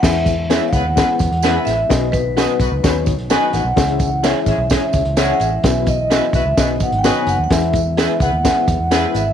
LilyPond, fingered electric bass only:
\new Staff \with { instrumentName = "Fingered electric bass" } { \clef bass \time 4/4 \key e \major \tempo 4 = 128 e,4~ e,16 r16 cis,16 dis,8 r16 e,16 e,8. a,,8 | b,,4~ b,,16 r16 b,,16 cis,16 dis,8. b,,8 r16 a,,16 b,,16 | cis,4~ cis,16 r16 a,,16 b,,8 r16 cis,16 cis,8. a,,8 | b,,4~ b,,16 r16 b,,16 cis,16 b,,8. gis,,8 r16 fis,,16 dis,16 |
e,4~ e,16 r16 cis,16 dis,8 r16 e,16 e,8. gis,,8 | }